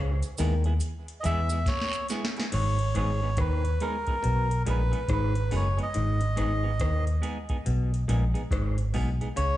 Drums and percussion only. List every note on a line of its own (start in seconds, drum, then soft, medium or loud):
0.23 closed hi-hat medium
0.23 cabasa soft
0.38 open hi-hat medium
0.38 cabasa medium
0.64 closed hi-hat soft
0.80 closed hi-hat medium
0.80 cabasa medium
1.08 closed hi-hat soft
1.24 closed hi-hat medium
1.24 cabasa medium
1.49 closed hi-hat soft
1.49 cabasa medium
1.66 kick loud
1.66 snare medium
1.66 closed hi-hat loud
1.66 long guiro medium
1.81 snare medium
1.93 closed hi-hat medium
1.93 cabasa medium
2.09 snare medium
2.09 closed hi-hat medium
2.09 cabasa medium
2.25 snare loud
2.37 snare medium
2.37 closed hi-hat soft
2.52 closed hi-hat medium
2.52 crash medium
2.79 closed hi-hat medium
2.95 cross-stick medium
2.95 closed hi-hat medium
3.37 kick loud
3.37 cross-stick loud
3.37 closed hi-hat medium
3.65 closed hi-hat medium
3.80 closed hi-hat medium
4.07 kick medium
4.07 closed hi-hat soft
4.24 closed hi-hat medium
4.51 closed hi-hat medium
4.67 closed hi-hat medium
4.93 closed hi-hat soft
5.08 kick loud
5.08 cross-stick loud
5.08 closed hi-hat medium
5.35 closed hi-hat soft
5.51 open hi-hat medium
5.79 closed hi-hat soft
5.94 closed hi-hat medium
6.21 closed hi-hat medium
6.37 cross-stick medium
6.37 closed hi-hat medium
6.80 kick loud
6.80 cross-stick loud
6.80 closed hi-hat medium
7.07 closed hi-hat soft
7.23 closed hi-hat medium
7.49 kick medium
7.49 closed hi-hat soft
7.66 closed hi-hat medium
7.94 closed hi-hat soft
8.09 closed hi-hat medium
8.35 closed hi-hat soft
8.51 kick loud
8.51 cross-stick loud
8.51 closed hi-hat medium
8.78 closed hi-hat soft
8.94 open hi-hat medium
9.21 closed hi-hat soft
9.37 closed hi-hat medium